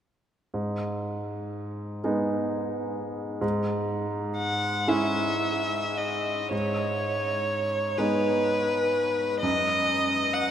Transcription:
0.54 2.00 G#2 soft
2.04 3.39 G#3 soft
2.04 3.39 B3 soft
2.04 3.39 D#4 soft
3.41 4.85 G#2 soft
4.38 4.90 F#5 soft
4.88 6.47 G#3 soft
4.88 6.47 C#4 soft
4.88 6.48 E4 soft
4.88 5.99 E5 soft
5.97 6.52 D#5 soft
6.51 7.94 G#2 soft
6.51 7.99 C#5 medium
7.97 9.38 G#3 soft
7.97 9.38 B3 soft
7.97 9.39 D#4 soft
7.97 9.39 B4 medium
9.40 10.51 F#2 soft
9.40 10.35 D#5 medium
10.34 10.51 F#5 medium

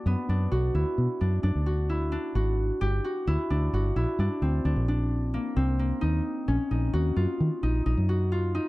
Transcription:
0.00 0.12 A#3 medium
0.00 0.29 D4 medium
0.00 0.74 E4 medium
0.00 0.51 F#4 medium
0.06 0.14 F#2 medium
0.06 3.17 B3 medium
0.29 0.46 F#2 medium
0.29 1.20 D4 medium
0.52 0.69 B1 medium
0.52 1.66 F#4 medium
0.75 0.83 D2 medium
0.75 1.89 E4 medium
0.98 1.07 B2 medium
1.21 1.38 F#2 medium
1.21 1.43 D4 medium
1.43 1.52 F#2 medium
1.43 2.11 D4 medium
1.55 2.16 D2 medium
1.66 2.35 F#4 medium
1.89 3.27 E4 medium
2.12 3.50 D4 medium
2.35 2.70 G#1 medium
2.35 2.87 F#4 medium
2.81 2.99 G1 medium
2.81 3.10 G4 medium
3.04 3.73 F#4 medium
3.27 3.36 D2 medium
3.27 3.96 E4 medium
3.50 3.68 D2 medium
3.50 4.19 D4 medium
3.73 3.91 G1 medium
3.73 6.17 F#4 medium
3.96 4.05 A#1 medium
3.96 6.07 E4 medium
4.19 4.28 G2 medium
4.19 4.65 D4 medium
4.42 4.59 D2 medium
4.42 5.56 C4 medium
4.65 4.74 D2 medium
4.65 4.88 D4 medium
4.76 5.37 A#1 medium
4.88 6.07 D4 medium
5.34 5.79 A#3 medium
5.56 5.91 C2 medium
5.56 6.54 C4 medium
5.79 8.68 A#3 medium
6.01 6.20 D#2 medium
6.01 6.70 D#4 medium
6.48 6.57 A#1 medium
6.48 8.68 C#4 medium
6.71 6.88 A#1 medium
6.71 7.63 D#4 medium
6.93 7.11 D#2 medium
6.93 7.22 F#4 medium
7.16 7.25 F#2 medium
7.16 8.15 F4 medium
7.40 7.49 D#3 medium
7.63 7.80 A#1 medium
7.63 7.85 D#4 medium
7.86 7.94 A#1 medium
7.86 8.54 D#4 medium
7.97 8.58 F#2 medium
8.09 8.38 F#4 medium
8.32 8.68 F4 medium
8.55 8.68 D#4 medium

